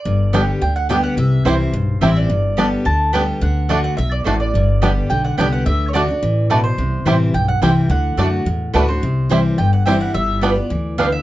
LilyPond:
<<
  \new Staff \with { instrumentName = "Mandolin" } { \time 4/4 \key g \major \tempo 4 = 214 d''2 g''8 fis''8 g''8 fis''8 | e''4 c''2 e''8 d''8~ | d''2 a''4 g''4 | fis''4. fis''8 e''8 d''8 c''8 d''8~ |
d''2 g''8 fis''8 g''8 fis''8 | e''8. cis''16 d''2 b'8 c''8~ | c''2 g''8 fis''8 g''4 | fis''2. b'8 c''8~ |
c''2 g''8 fis''8 g''8 fis''8 | e''4 d''2 f''8 e''8 | }
  \new Staff \with { instrumentName = "Mandolin" } { \time 4/4 \key g \major r4 <b g' d'' g''>8 r4. <b g' d'' g''>8 r8 | r4 <c' e' c'' g''>8 r4. <c' e' c'' g''>8 r8 | r4 <b g' d'' a''>8 r4. <b g' d'' a''>8 r8 | r4 <a fis' d'' a''>8 r4. <a fis' d'' a''>8 r8 |
r4 <b g' d'' g''>8 r4. <b g' d'' g''>8 r8 | r4 <a fis' d'' a''>8 r4. <a fis' d'' a''>8 r8 | r4 <c' e' c'' g''>8 r4. <c' e' c'' g''>8 r8 | r4 <a fis' d'' a''>8 r4. <a fis' d'' a''>8 r8 |
r4 <c' e' c'' g''>8 r4. <c' e' c'' g''>8 r8 | r4 <b f' b' g''>8 r4. <b f' b' g''>8 r8 | }
  \new Staff \with { instrumentName = "Five-string banjo" } { \time 4/4 \key g \major r4 <g b d'>8 r4. <g b d'>8 r8 | r4 <g c' e'>8 r4. <g c' e'>8 r8 | r4 <g b d'>8 r4. <g b d'>8 r8 | r4 <a d'>8 r4. <a d'>8 r8 |
r4 <g b d'>8 r4. <g b d'>8 r8 | r4 <a d'>8 r4. <a d'>8 r8 | r4 <g c' e'>8 r4. <g c' e'>8 r8 | r4 <a d'>8 r4. <a d'>8 r8 |
r4 <g c' e'>8 r4. <g c' e'>8 r8 | r4 <g b d'>8 r4. <g b d'>8 r8 | }
  \new Staff \with { instrumentName = "Steel-string acoustic guitar" } { \clef bass \time 4/4 \key g \major << { r4 <d g b g'>4 r4 <d g b g'>4 | r4 <e g c' e'>4 r4 <e g c' e'>4 | r4 <d g b g'>4 r4 <d g b g'>4 | r4 <d a d' fis'>4 r2 |
r4 <d g b g'>4 r4 <d g b g'>4 | r4 <d a d' fis'>8 <d' fis'>8 r2 | r4 <e g c' e'>4 r4 <e g c' e'>4 | r4 <d a d' fis'>4 r4 <d a d' fis'>8 <d' fis'>8 |
r4 <e g c' e'>4 r4 <e g c' e'>4 | r4 <g b f'>8 <b f'>8 r2 | } \\ { g,2 d2 | c2 g,2 | g,2 d2 | d2 b,4 a,4 |
g,2 d2 | d2 e4 b,4 | c2 g,2 | d2 a,2 |
c2 g,2 | g2 e4 d4 | } >> }
  \new Staff \with { instrumentName = "Upright bass" } { \clef bass \time 4/4 \key g \major g,,2 d,2 | c,4 c,4 b,,4 a,,4 | g,,2 d,2 | d,2 b,,4 a,,4 |
g,,2 b,,4 c,4 | d,2 a,,2 | c,4 a,,4 b,,4 c,4 | d,4 fis,4 e,4 d,4 |
c,2 g,,2 | g,,2 d,2 | }
>>